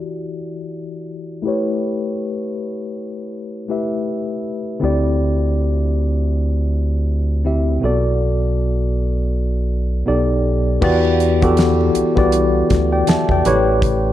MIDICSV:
0, 0, Header, 1, 4, 480
1, 0, Start_track
1, 0, Key_signature, 1, "minor"
1, 0, Tempo, 750000
1, 1165, Time_signature, 4, 2, 24, 8
1, 9042, End_track
2, 0, Start_track
2, 0, Title_t, "Tine electric piano"
2, 0, Program_c, 0, 4
2, 0, Control_c, 0, 64, 127
2, 0, Note_on_c, 0, 52, 56
2, 0, Note_on_c, 0, 64, 51
2, 0, Note_on_c, 0, 66, 53
2, 0, Note_on_c, 0, 67, 52
2, 0, Note_on_c, 0, 74, 63
2, 893, Note_off_c, 0, 52, 0
2, 899, Note_off_c, 0, 64, 0
2, 903, Note_off_c, 0, 66, 0
2, 908, Note_off_c, 0, 67, 0
2, 911, Note_off_c, 0, 74, 0
2, 911, Note_on_c, 0, 57, 60
2, 918, Note_on_c, 0, 64, 56
2, 931, Note_on_c, 0, 67, 52
2, 932, Control_c, 0, 64, 0
2, 938, Note_on_c, 0, 71, 51
2, 947, Note_on_c, 0, 73, 65
2, 1033, Control_c, 0, 64, 127
2, 2333, Note_off_c, 0, 57, 0
2, 2336, Note_off_c, 0, 64, 0
2, 2342, Note_off_c, 0, 67, 0
2, 2346, Note_off_c, 0, 71, 0
2, 2351, Note_off_c, 0, 73, 0
2, 2357, Note_on_c, 0, 57, 42
2, 2364, Note_on_c, 0, 64, 39
2, 2368, Note_on_c, 0, 67, 41
2, 2372, Note_on_c, 0, 71, 39
2, 2376, Note_on_c, 0, 76, 47
2, 3070, Note_on_c, 0, 50, 60
2, 3077, Note_on_c, 0, 60, 58
2, 3078, Note_off_c, 0, 64, 0
2, 3081, Note_off_c, 0, 57, 0
2, 3086, Note_on_c, 0, 64, 54
2, 3087, Note_off_c, 0, 67, 0
2, 3089, Note_off_c, 0, 71, 0
2, 3091, Note_off_c, 0, 76, 0
2, 3093, Control_c, 0, 64, 0
2, 3095, Note_on_c, 0, 67, 55
2, 3102, Note_on_c, 0, 74, 70
2, 3186, Control_c, 0, 64, 127
2, 4732, Note_off_c, 0, 50, 0
2, 4736, Note_off_c, 0, 60, 0
2, 4740, Note_off_c, 0, 64, 0
2, 4745, Note_off_c, 0, 67, 0
2, 4748, Note_off_c, 0, 74, 0
2, 4763, Note_on_c, 0, 50, 45
2, 4765, Note_on_c, 0, 60, 42
2, 4770, Note_on_c, 0, 64, 41
2, 4774, Note_on_c, 0, 67, 43
2, 4778, Note_on_c, 0, 76, 49
2, 4992, Note_on_c, 0, 47, 61
2, 5002, Note_on_c, 0, 59, 54
2, 5004, Note_off_c, 0, 50, 0
2, 5006, Note_off_c, 0, 60, 0
2, 5008, Note_off_c, 0, 64, 0
2, 5010, Note_off_c, 0, 67, 0
2, 5012, Note_off_c, 0, 76, 0
2, 5012, Note_on_c, 0, 66, 55
2, 5014, Control_c, 0, 64, 0
2, 5017, Note_on_c, 0, 69, 58
2, 5025, Note_on_c, 0, 74, 66
2, 5134, Control_c, 0, 64, 127
2, 6413, Note_off_c, 0, 47, 0
2, 6418, Note_off_c, 0, 59, 0
2, 6423, Note_off_c, 0, 66, 0
2, 6426, Note_off_c, 0, 69, 0
2, 6430, Note_off_c, 0, 74, 0
2, 6438, Note_on_c, 0, 59, 50
2, 6439, Note_on_c, 0, 47, 52
2, 6444, Note_on_c, 0, 63, 54
2, 6449, Note_on_c, 0, 67, 51
2, 6451, Note_on_c, 0, 69, 50
2, 6452, Note_on_c, 0, 74, 65
2, 6453, Control_c, 0, 64, 0
2, 6558, Control_c, 0, 64, 127
2, 6914, Note_off_c, 0, 59, 0
2, 6920, Note_on_c, 0, 52, 102
2, 6921, Note_on_c, 0, 59, 88
2, 6922, Note_off_c, 0, 47, 0
2, 6923, Note_off_c, 0, 67, 0
2, 6925, Note_off_c, 0, 63, 0
2, 6927, Note_on_c, 0, 66, 90
2, 6928, Note_off_c, 0, 69, 0
2, 6929, Note_off_c, 0, 74, 0
2, 6931, Note_on_c, 0, 67, 91
2, 6935, Control_c, 0, 64, 0
2, 6938, Note_on_c, 0, 74, 107
2, 7045, Control_c, 0, 64, 127
2, 7215, Note_off_c, 0, 52, 0
2, 7215, Note_off_c, 0, 59, 0
2, 7218, Note_off_c, 0, 66, 0
2, 7220, Note_off_c, 0, 67, 0
2, 7224, Note_off_c, 0, 74, 0
2, 7304, Note_on_c, 0, 52, 75
2, 7310, Note_on_c, 0, 59, 71
2, 7315, Note_on_c, 0, 66, 72
2, 7319, Note_on_c, 0, 67, 69
2, 7325, Note_on_c, 0, 69, 82
2, 7665, Note_off_c, 0, 52, 0
2, 7667, Note_off_c, 0, 59, 0
2, 7670, Note_off_c, 0, 66, 0
2, 7672, Note_off_c, 0, 67, 0
2, 7675, Note_off_c, 0, 69, 0
2, 7779, Note_on_c, 0, 52, 72
2, 7782, Note_on_c, 0, 59, 62
2, 7788, Note_on_c, 0, 66, 64
2, 7792, Note_on_c, 0, 67, 63
2, 7797, Note_on_c, 0, 74, 75
2, 8129, Note_off_c, 0, 74, 0
2, 8272, Note_on_c, 0, 79, 57
2, 8274, Note_on_c, 0, 74, 51
2, 8362, Note_off_c, 0, 79, 0
2, 8364, Note_off_c, 0, 74, 0
2, 8375, Note_on_c, 0, 76, 53
2, 8375, Note_on_c, 0, 81, 61
2, 8507, Note_off_c, 0, 76, 0
2, 8507, Note_off_c, 0, 81, 0
2, 8521, Note_on_c, 0, 79, 59
2, 8522, Note_on_c, 0, 74, 50
2, 8533, Note_off_c, 0, 52, 0
2, 8534, Note_off_c, 0, 59, 0
2, 8537, Note_off_c, 0, 66, 0
2, 8540, Note_off_c, 0, 67, 0
2, 8605, Note_on_c, 0, 45, 85
2, 8607, Note_on_c, 0, 57, 75
2, 8614, Control_c, 0, 64, 0
2, 8614, Note_on_c, 0, 67, 75
2, 8616, Note_on_c, 0, 71, 80
2, 8624, Note_on_c, 0, 73, 90
2, 8742, Control_c, 0, 64, 127
2, 8743, Note_off_c, 0, 79, 0
2, 8744, Note_off_c, 0, 74, 0
2, 9042, Note_off_c, 0, 45, 0
2, 9042, Note_off_c, 0, 57, 0
2, 9042, Note_off_c, 0, 67, 0
2, 9042, Note_off_c, 0, 71, 0
2, 9042, Note_off_c, 0, 73, 0
2, 9042, End_track
3, 0, Start_track
3, 0, Title_t, "Analog synth bass"
3, 0, Program_c, 1, 38
3, 3092, Note_on_c, 1, 38, 72
3, 4983, Note_off_c, 1, 38, 0
3, 5014, Note_on_c, 1, 35, 74
3, 6424, Note_off_c, 1, 35, 0
3, 6456, Note_on_c, 1, 35, 79
3, 6907, Note_off_c, 1, 35, 0
3, 6927, Note_on_c, 1, 40, 106
3, 7621, Note_off_c, 1, 40, 0
3, 7651, Note_on_c, 1, 36, 42
3, 7707, Note_off_c, 1, 36, 0
3, 7791, Note_on_c, 1, 36, 83
3, 8085, Note_off_c, 1, 36, 0
3, 8136, Note_on_c, 1, 38, 82
3, 8342, Note_off_c, 1, 38, 0
3, 8375, Note_on_c, 1, 40, 47
3, 8430, Note_off_c, 1, 40, 0
3, 8508, Note_on_c, 1, 40, 76
3, 8593, Note_off_c, 1, 40, 0
3, 8611, Note_on_c, 1, 33, 98
3, 9042, Note_off_c, 1, 33, 0
3, 9042, End_track
4, 0, Start_track
4, 0, Title_t, "Drums"
4, 6925, Note_on_c, 9, 36, 101
4, 6925, Note_on_c, 9, 49, 86
4, 6928, Note_on_c, 9, 64, 57
4, 6989, Note_off_c, 9, 36, 0
4, 6989, Note_off_c, 9, 49, 0
4, 6992, Note_off_c, 9, 64, 0
4, 7071, Note_on_c, 9, 62, 27
4, 7135, Note_off_c, 9, 62, 0
4, 7169, Note_on_c, 9, 42, 50
4, 7233, Note_off_c, 9, 42, 0
4, 7310, Note_on_c, 9, 63, 57
4, 7311, Note_on_c, 9, 42, 44
4, 7312, Note_on_c, 9, 36, 79
4, 7374, Note_off_c, 9, 63, 0
4, 7375, Note_off_c, 9, 42, 0
4, 7376, Note_off_c, 9, 36, 0
4, 7405, Note_on_c, 9, 42, 66
4, 7417, Note_on_c, 9, 38, 100
4, 7469, Note_off_c, 9, 42, 0
4, 7481, Note_off_c, 9, 38, 0
4, 7556, Note_on_c, 9, 62, 26
4, 7620, Note_off_c, 9, 62, 0
4, 7648, Note_on_c, 9, 42, 68
4, 7712, Note_off_c, 9, 42, 0
4, 7789, Note_on_c, 9, 36, 83
4, 7853, Note_off_c, 9, 36, 0
4, 7887, Note_on_c, 9, 42, 75
4, 7951, Note_off_c, 9, 42, 0
4, 8126, Note_on_c, 9, 63, 46
4, 8129, Note_on_c, 9, 42, 74
4, 8132, Note_on_c, 9, 36, 88
4, 8142, Note_on_c, 9, 38, 32
4, 8190, Note_off_c, 9, 63, 0
4, 8193, Note_off_c, 9, 42, 0
4, 8196, Note_off_c, 9, 36, 0
4, 8206, Note_off_c, 9, 38, 0
4, 8366, Note_on_c, 9, 42, 73
4, 8367, Note_on_c, 9, 62, 29
4, 8367, Note_on_c, 9, 63, 62
4, 8381, Note_on_c, 9, 38, 99
4, 8430, Note_off_c, 9, 42, 0
4, 8431, Note_off_c, 9, 62, 0
4, 8431, Note_off_c, 9, 63, 0
4, 8445, Note_off_c, 9, 38, 0
4, 8504, Note_on_c, 9, 36, 76
4, 8522, Note_on_c, 9, 62, 23
4, 8522, Note_on_c, 9, 64, 47
4, 8568, Note_off_c, 9, 36, 0
4, 8586, Note_off_c, 9, 62, 0
4, 8586, Note_off_c, 9, 64, 0
4, 8609, Note_on_c, 9, 42, 65
4, 8620, Note_on_c, 9, 63, 58
4, 8620, Note_on_c, 9, 64, 56
4, 8673, Note_off_c, 9, 42, 0
4, 8684, Note_off_c, 9, 63, 0
4, 8684, Note_off_c, 9, 64, 0
4, 8846, Note_on_c, 9, 36, 109
4, 8850, Note_on_c, 9, 42, 78
4, 8856, Note_on_c, 9, 62, 25
4, 8856, Note_on_c, 9, 64, 58
4, 8910, Note_off_c, 9, 36, 0
4, 8914, Note_off_c, 9, 42, 0
4, 8920, Note_off_c, 9, 62, 0
4, 8920, Note_off_c, 9, 64, 0
4, 9042, End_track
0, 0, End_of_file